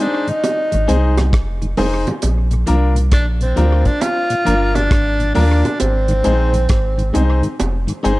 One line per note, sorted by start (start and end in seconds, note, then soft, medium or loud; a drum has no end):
0.00 0.31 D4 medium
0.00 0.24 D#4 medium
0.00 0.25 G#4 medium
0.00 0.25 C5 medium
0.27 0.32 G#2 medium
0.27 0.32 D#3 medium
0.27 1.18 D#4 medium
0.27 closed hi-hat soft
0.44 closed hi-hat medium
0.44 high bongo medium
0.72 0.88 G#1 medium
0.72 0.77 G#2 medium
0.72 0.77 D#3 medium
0.72 closed hi-hat medium
0.87 1.35 C2 medium
0.87 0.97 G#3 medium
0.87 0.97 C4 medium
0.87 1.14 D#4 medium
0.87 0.97 D#4 medium
0.87 1.14 G#4 medium
0.87 1.14 C5 medium
0.87 closed hi-hat medium
1.17 1.22 G#2 medium
1.17 1.22 D#3 medium
1.17 cross-stick medium
1.17 closed hi-hat medium
1.17 high bongo medium
1.33 1.75 F1 medium
1.33 kick loud
1.33 cross-stick loud
1.33 closed hi-hat medium
1.62 1.67 G#2 medium
1.62 1.67 D#3 soft
1.62 closed hi-hat soft
1.77 2.05 F1 medium
1.77 1.87 G#3 medium
1.77 1.87 C4 medium
1.77 2.04 D#4 loud
1.77 1.87 D#4 medium
1.77 2.04 G#4 medium
1.77 2.04 C5 loud
1.77 open hi-hat medium
1.77 low bongo medium
2.07 2.12 G#2 medium
2.07 2.12 D#3 medium
2.07 closed hi-hat soft
2.07 high bongo medium
2.22 2.65 A#1 loud
2.22 closed hi-hat loud
2.22 high bongo medium
2.51 2.56 A#2 medium
2.51 closed hi-hat soft
2.66 3.14 C2 medium
2.66 2.76 F3 medium
2.66 2.76 A#3 medium
2.66 2.76 D4 medium
2.66 2.93 D4 medium
2.66 2.93 F4 medium
2.66 2.94 A#4 medium
2.66 closed hi-hat medium
2.95 3.00 A#2 soft
2.95 closed hi-hat medium
3.12 3.54 A#1 medium
3.12 3.26 D4 medium
3.12 kick loud
3.12 cross-stick loud
3.12 closed hi-hat loud
3.41 3.46 A#2 medium
3.41 3.88 C4 medium
3.41 closed hi-hat medium
3.56 3.84 D2 loud
3.56 3.65 F3 medium
3.56 3.65 A#3 medium
3.56 3.82 D4 medium
3.56 3.65 D4 medium
3.56 3.83 F4 medium
3.56 3.83 A#4 medium
3.56 closed hi-hat medium
3.56 high bongo soft
3.85 3.90 A#2 medium
3.85 4.04 D4 medium
3.85 kick medium
3.85 closed hi-hat soft
4.01 4.77 F4 loud
4.01 closed hi-hat medium
4.01 high bongo medium
4.30 4.35 A#2 medium
4.30 closed hi-hat medium
4.45 4.89 G1 medium
4.45 4.55 F3 medium
4.45 4.55 A#3 medium
4.45 4.72 D4 medium
4.45 4.55 D4 medium
4.45 4.72 F4 medium
4.45 4.72 A#4 loud
4.45 closed hi-hat medium
4.75 4.80 A#2 medium
4.75 5.34 D4 loud
4.75 closed hi-hat medium
4.75 high bongo medium
4.91 5.33 G#1 medium
4.91 kick loud
4.91 cross-stick loud
4.91 closed hi-hat medium
5.19 5.24 A#2 medium
5.19 closed hi-hat soft
5.34 5.63 D#2 medium
5.34 5.44 F3 medium
5.34 5.44 A#3 medium
5.34 5.61 D4 loud
5.34 5.77 D4 medium
5.34 5.44 D4 medium
5.34 5.61 F4 medium
5.34 5.62 A#4 loud
5.34 open hi-hat medium
5.34 low bongo medium
5.64 5.69 A#2 medium
5.64 closed hi-hat medium
5.64 high bongo medium
5.80 6.23 G#1 medium
5.80 7.55 C4 loud
5.80 closed hi-hat loud
5.80 high bongo medium
6.08 6.14 G#2 medium
6.08 6.14 D#3 medium
6.08 closed hi-hat medium
6.24 6.68 A#1 medium
6.24 6.33 G#3 medium
6.24 6.34 C4 medium
6.24 6.34 D#4 medium
6.24 6.51 D#4 medium
6.24 6.51 G#4 medium
6.24 6.51 C5 loud
6.24 closed hi-hat medium
6.53 6.58 G#2 soft
6.53 6.58 D#3 medium
6.53 closed hi-hat medium
6.69 7.12 G#1 medium
6.69 kick loud
6.69 cross-stick loud
6.69 closed hi-hat medium
6.97 7.03 G#2 medium
6.97 7.03 D#3 medium
6.97 closed hi-hat soft
7.13 7.42 C2 medium
7.13 7.23 G#3 medium
7.13 7.23 C4 medium
7.13 7.23 D#4 medium
7.13 7.40 D#4 medium
7.13 7.41 G#4 medium
7.13 7.41 C5 medium
7.13 closed hi-hat medium
7.13 high bongo soft
7.42 7.48 G#2 medium
7.42 7.48 D#3 medium
7.42 closed hi-hat soft
7.60 7.87 F1 medium
7.60 closed hi-hat medium
7.60 high bongo medium
7.87 7.93 G#2 medium
7.87 7.93 D#3 medium
7.87 closed hi-hat medium
8.03 8.20 G1 medium
8.03 8.13 G#3 medium
8.03 8.13 C4 medium
8.03 8.13 D#4 medium
8.03 8.20 D#4 medium
8.03 8.20 G#4 medium
8.03 8.20 C5 loud
8.03 closed hi-hat medium